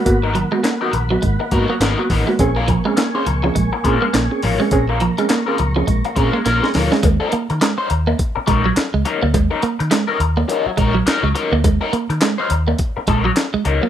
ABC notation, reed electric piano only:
X:1
M:4/4
L:1/16
Q:"Swing 16ths" 1/4=104
K:Ebm
V:1 name="Reed electric piano"
[B,CG] z2 [B,CG] z [B,CG] z [B,CG] z2 [B,CG] z2 [B,CG] z [B,CG] | [=CDA] z2 [CDA] z [CDA] z [CDA] z2 [CDA] [DA] z [CDA] z [CDA] | [=CDA] z2 [CDA] z [CDA] z [CDA] z2 [CDA] [DA] z [CDA] z [CDA] | z16 |
z16 | z16 |]
V:2 name="Reed electric piano" clef=bass
z2 [A,,E,]2 z2 [A,,E,]2 [A,,E,]2 z4 [A,,E,]2 | z2 [B,,F,]2 z2 [B,,F,]2 [B,,F,]2 z4 [B,,F,]2 | z2 [B,,F,]2 z2 [B,,F,]2 [B,,F,]2 z4 [B,,F,]2 | z16 |
z16 | z16 |]